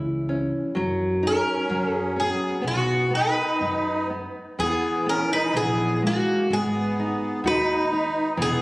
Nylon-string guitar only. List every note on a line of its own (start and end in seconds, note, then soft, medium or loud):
0.00 0.73 E3 medium
0.00 0.30 E4 soft
0.29 0.75 C#4 medium
0.75 1.66 F#3 medium
1.23 1.68 D#4 soft
1.69 2.60 F#3 medium
2.16 2.61 C#4 soft
2.61 3.09 B3 medium
3.10 3.59 B3 soft
3.61 4.09 B3 soft
4.10 4.57 B3 soft
4.59 5.52 E3 medium
5.06 5.53 B3 soft
5.53 6.01 E3 medium
6.02 6.49 G#3 soft
6.52 8.34 G#3 medium
7.00 7.44 D#4 soft
7.46 7.90 F#4 medium
7.93 8.37 D#4 soft
8.37 8.62 E3 medium